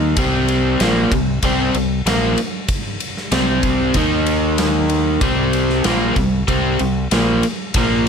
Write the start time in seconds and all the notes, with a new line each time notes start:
Already playing: D#2 D#3 A#3 D#4
0.17 C2 C3 G3 C4, kick, ride
0.48 ride
0.80 A#1 A#2 F3 A#3, snare, ride
1.11 C2 C3 G3, kick, ride
1.43 C2 C3 G3 C4, kick, ride
1.74 C2 C3 G3, ride
2.06 A#1 A#2 F3 A#3, snare, ride
2.38 ride
2.68 kick, ride
3.00 ride
3.17 snare
3.32 C2 C3 G3 C4, snare, ride
3.63 kick, ride
3.94 D#2 D#3 A#3 D#4, kick, ride
4.26 ride
4.58 snare, ride
4.89 ride
5.21 C2 C3 G3 C4, kick, ride
5.53 ride
5.70 snare
5.84 A#1 A#2 F3 A#3, snare, ride
6.16 C2 C3 G3, kick, ride
6.48 C2 C3 G3 C4, kick, ride
6.79 C2 C3 G3, ride
7.11 A#1 A#2 F3 A#3, snare, ride
7.43 ride
7.74 A#1 A#2 F3 A#3, kick, ride